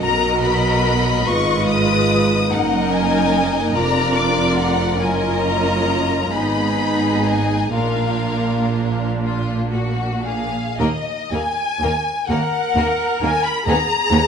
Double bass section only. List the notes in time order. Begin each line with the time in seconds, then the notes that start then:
0.03 B1
1.27 G#1
2.52 F#1
3.75 F1
5.01 F#1
6.33 G#1
7.73 A#1
10.79 D#2
11.31 D#2
11.82 D#2
12.29 D#2
12.75 D#2
13.21 D#2
13.67 D#2
14.11 D#2